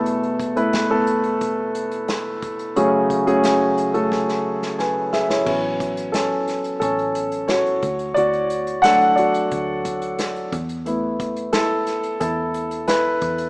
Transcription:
<<
  \new Staff \with { instrumentName = "Grand piano" } { \time 4/4 \key a \major \tempo 4 = 89 << { r1 | r2. <b' gis''>8 <gis' e''>16 <e' cis''>16~ | <e' cis''>16 r8. <cis' a'>4 <cis' a'>4 <fis' cis''>4 | <fis' d''>4 <a' fis''>8 <fis' d''>2 r8 |
r4 <e' a'>4 <e' a'>4 <e' b'>4 | } \\ { <a b e' a'>8 r16 <a b e' b'>8 <a b e' a'>4.~ <a b e' a'>16 r4 | <a cis' fis' gis'>8. <a cis' fis' gis'>4 <a cis' fis' a'>4.~ <a cis' fis' a'>16 r8 | r1 | r1 |
r1 | } >> }
  \new Staff \with { instrumentName = "Grand piano" } { \time 4/4 \key a \major <e, b,>2.~ <e, b,>8 r8 | <fis, cis>1 | <fis b cis'>4. r2 r8 | r4 <fis a d'>8 r2 r8 |
<a b e'>4. r2 r8 | }
  \new Staff \with { instrumentName = "Fingered electric bass" } { \clef bass \time 4/4 \key a \major r1 | r1 | a,,2 a,,4. d,8 | d,2 d,4. e,8~ |
e,2 e,4. e,8 | }
  \new DrumStaff \with { instrumentName = "Drums" } \drummode { \time 4/4 hh16 hh16 <hh bd>16 hh16 <hh sn>8 hh16 hh16 <hh bd>8 hh16 hh16 <hh sn>8 <hh bd>16 hh16 | hh8 <hh bd>16 hh16 <hh sn>8 hh16 hh16 <bd sn>16 sn8 sn16 sn8 sn16 sn16 | <cymc bd>8 <hh bd>16 hh16 <hh sn>8 <hh sn>16 hh16 <hh bd>16 hh16 hh16 hh16 <hh sn>16 hh16 <hh bd>16 hh16 | hh16 hh16 hh16 hh16 <hh sn>16 hh16 hh16 hh16 <hh bd>8 <hh bd>16 hh16 <hh sn>16 hh16 <hh bd>16 hh16 |
hh8 <hh bd>16 hh16 <hh sn>8 <hh sn>16 hh16 <hh bd>8 hh16 hh16 <hh sn>8 <hh bd>16 hh16 | }
>>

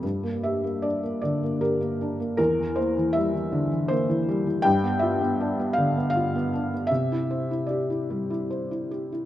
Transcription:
<<
  \new Staff \with { instrumentName = "Felt piano" } { \time 3/4 \key g \dorian \tempo 4 = 78 r8 e''8 d''8 d''8 bes'4 | bes'8 c''8 e''4 c''4 | g''8 e''4 f''8 f''4 | e''4 d''4. r8 | }
  \new Staff \with { instrumentName = "Felt piano" } { \time 3/4 \key g \dorian g,16 bes16 g'16 bes16 d'16 bes16 d16 bes16 g'16 bes16 d'16 bes16 | e,16 e16 bes16 e16 g16 e16 d16 e16 bes16 e16 g16 e16 | g,16 b16 f'16 b16 d'16 b16 d16 b16 f'16 b16 d'16 b16 | c16 e'16 c''16 e'16 g'16 e'16 g16 e'16 c''16 e'16 g'16 e'16 | }
>>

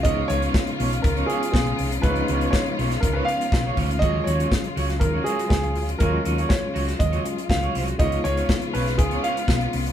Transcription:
<<
  \new Staff \with { instrumentName = "Grand piano" } { \time 4/4 \key des \mixolydian \tempo 4 = 121 ees''8 des''4. bes'8 aes'8 aes'8. r16 | ces''4 des''4 bes'16 ces''16 f''4. | ees''8 des''4. bes'8 aes'8 aes'8. r16 | bes'4 des''4 ees''4 f''8. r16 |
ees''8 des''4 ces''8 aes'8 f''4 r8 | }
  \new Staff \with { instrumentName = "Clean electric guitar" } { \time 4/4 \key des \mixolydian <f' ces'' des''>16 r16 <f' ces'' des''>16 <f' ces'' des''>16 r8 <f' ces'' des''>16 r8 <f' ces'' des''>16 <f' ces'' des''>16 r4 r16 | <f' ces'' des''>16 r16 <f' ces'' des''>16 <f' ces'' des''>16 r8 <f' ces'' des''>16 r8 <f' ces'' des''>16 r8. <f' ces'' des''>16 <f' ces'' des''>16 r16 | <ges' aes' des''>16 r16 <ges' aes' des''>16 <ges' aes' des''>16 r8 <ges' aes' des''>16 r8 <ges' aes' des''>16 <ges' aes' des''>16 r4 r16 | <ges' aes' des''>16 r16 <ges' aes' des''>16 <ges' aes' des''>16 r8 <ges' aes' des''>16 r8 <ges' aes' des''>16 r8. <ges' aes' des''>16 <ges' aes' des''>8 |
<f' ces'' des''>16 r16 <f' ces'' des''>16 <f' ces'' des''>16 r8 <f' ces'' des''>16 r8 <f' ces'' des''>16 <f' ces'' des''>16 r4 r16 | }
  \new Staff \with { instrumentName = "Tine electric piano" } { \time 4/4 \key des \mixolydian <f aes ces' ees'>1 | <f aes ces' d' ees'>1 | <ges aes des' f'>1 | <ges aes des' f'>2~ <ges aes des' f'>8 <ges aes des' f'>4. |
<aes ces' ees' f'>1 | }
  \new Staff \with { instrumentName = "String section" } { \time 4/4 \key des \mixolydian << { <des f'>1~ | <des f'>1~ | <des f'>1~ | <des f'>1 |
f'1 | } \\ { ces'1~ | ces'1 | <ges aes>1~ | <ges aes>1 |
<des ces'>1 | } >> }
  \new Staff \with { instrumentName = "Fingered electric bass" } { \clef bass \time 4/4 \key des \mixolydian des,8 des,8 r8 ces,8 des,8 r8 ces,8 c,8 | des,8 des,8 r8 ces,8 des,8 r8 ces,8 d,8 | ees,8 ees,8 r8 des,8 ees,8 r8 des,8 d,8 | ees,8 ees,8 r8 des,8 ees,8 r8 des,8 c,8 |
des,8 des,8 r8 ces,8 des,8 r8 ces,8 c,8 | }
  \new DrumStaff \with { instrumentName = "Drums" } \drummode { \time 4/4 <hh bd>8 hh16 hh16 <bd sn>16 hh16 hho16 hh16 <hh bd>16 hh16 hh16 hh16 <bd sn>16 hh16 hho16 hh16 | <hh bd>16 hh16 hh16 hh16 <bd sn>16 hh16 hho16 <hh sn>16 <hh bd>8 hh16 hh16 <bd sn>8 <hho bd>16 hh16 | <hh bd>8 hh16 hh16 <bd sn>16 hh16 hho16 <hh sn>16 <hh bd>8 hh16 hh16 <bd sn>16 hh16 hho16 hh16 | <hh bd>8 hh16 hh16 <bd sn>8 hho16 <hh sn>16 <hh bd>16 hh16 hh16 hh16 <bd sn>16 hh16 hho16 hh16 |
<hh bd>16 hh16 hh16 hh16 <bd sn>16 hh16 hho16 <hh sn>16 <hh bd>16 hh16 hh16 hh16 <bd sn>16 hh16 hho16 hh16 | }
>>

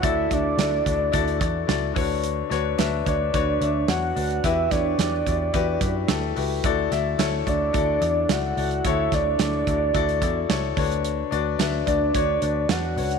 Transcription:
<<
  \new Staff \with { instrumentName = "Soft synth lead" } { \time 4/4 \key d \major \tempo 4 = 109 e''8 d''2. r8 | r4. d''4. fis''4 | e''8 d''2. r8 | r4. d''4. fis''4 |
e''8 d''2. r8 | r4. d''4. fis''4 | }
  \new Staff \with { instrumentName = "Grand piano" } { \time 4/4 \key d \major <e' fis' a' d''>8 <e' fis' a' e''>8 <e' fis' a' d''>8 <e' fis' a' d''>8 <e' fis' a' d''>8 <e' fis' a' d''>8 <e' fis' a' d''>8 <d' fis' b' cis''>8~ | <d' fis' b' cis''>8 <d' fis' b' cis''>8 <d' fis' b' e''>8 <d' fis' b' cis''>8 <d' fis' b' cis''>8 <d' fis' b' e''>8 <d' fis' b' cis''>8 <d' fis' b' d''>8 | <e' fis' g' b'>8 <e' fis' g' cis''>8 <e' fis' g' d''>8 <e' fis' g' d''>8 <e' fis' g' b'>8 <e' fis' g' b'>8 <e' fis' g' a'>8 <e' fis' g' b'>8 | <e' fis' a' d''>8 <e' fis' a' e''>8 <e' fis' a' cis''>8 <e' fis' a' d''>8 <e' fis' a' d''>8 <e' fis' a' d''>8 <e' fis' a' d''>8 <e' fis' a' d''>8 |
<e' fis' a' cis''>8 <e' fis' a' d''>8 <e' fis' a' d''>8 <e' fis' a' d''>8 <e' fis' a' d''>8 <e' fis' a' d''>8 <e' fis' a' cis''>8 <d' fis' b' cis''>8~ | <d' fis' b' cis''>8 <d' fis' b' d''>8 <d' fis' b' e''>8 <d' fis' b' d''>8 <d' fis' b' cis''>8 <d' fis' b' d''>8 <d' fis' b' d''>8 <d' fis' b' cis''>8 | }
  \new Staff \with { instrumentName = "Grand piano" } { \clef bass \time 4/4 \key d \major d4. r2 d8~ | d4 r2. | e4. r2 r8 | d4. r2 r8 |
d4. r2 d8~ | d4 r2. | }
  \new Staff \with { instrumentName = "Picked electric bass" } { \clef bass \time 4/4 \key d \major d,8 d,8 d,8 d,8 d,8 e,8 cis,8 d,8~ | d,8 d,8 d,8 d,8 d,8 d,8 e,8 d,8 | e,8 e,8 e,8 e,8 e,8 fis,8 d,8 cis,8 | d,8 d,8 d,8 d,8 d,8 e,8 cis,8 cis,8 |
d,8 d,8 d,8 d,8 d,8 e,8 cis,8 d,8~ | d,8 d,8 d,8 d,8 d,8 d,8 e,8 cis,8 | }
  \new DrumStaff \with { instrumentName = "Drums" } \drummode { \time 4/4 <hh bd>8 <hh bd>8 <hh sn>8 <hh bd>8 <hh bd>16 hh16 <hh bd>8 <hh sn>8 <hho bd>8 | hh8 <hh sn>8 <hh sn>8 <hh bd>8 <hh bd>8 hh8 <hh sn>8 hho16 hh16 | <hh bd>8 <hh bd sn>8 <hh sn>8 <hh bd>8 <hh bd>8 <hh bd>8 <hh sn>8 hho8 | <hh bd>8 <hh sn>8 <hh sn>8 <hh bd>8 <hh bd>8 hh8 <hh sn>8 hho16 hh16 |
<hh bd>8 <hh bd sn>8 <hh sn>8 <hh bd>8 <hh bd>16 hh16 <hh bd>8 <hh sn>8 <hho bd>16 hh16 | hh8 hh8 <hh sn>8 <hh bd>8 <hh bd>8 hh8 <hh sn>8 hho16 hh16 | }
>>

